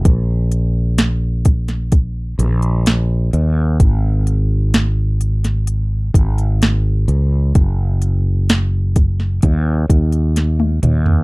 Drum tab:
HH |x-x-x-xxx-xxx-x-|x-x-x-xxx-xxx-x-|x-x-x-x-x-xxx-x-|
SD |----o--o----o---|----o--o----o---|----o--o----o---|
T1 |----------------|----------------|-------------o--|
T2 |----------------|----------------|--------------o-|
FT |----------------|----------------|---------------o|
BD |o-----o-o-------|o---------o-----|o-----o-o-o-----|